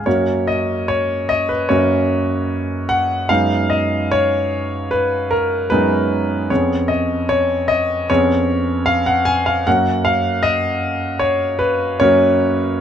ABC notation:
X:1
M:4/4
L:1/16
Q:1/4=75
K:F#
V:1 name="Grand piano"
c2 d2 c2 d B c6 f2 | e2 d2 c4 B2 A2 B4 | c2 d2 c2 d2 c4 e f g e | f2 e2 d4 c2 B2 c4 |]
V:2 name="Grand piano"
[F,,A,CF]8 [F,,A,CF]8 | [F,,G,B,D]12 [F,,G,B,D]4 | [E,,B,CG]8 [E,,B,CG]8 | [F,,A,CF]12 [F,,A,CF]4 |]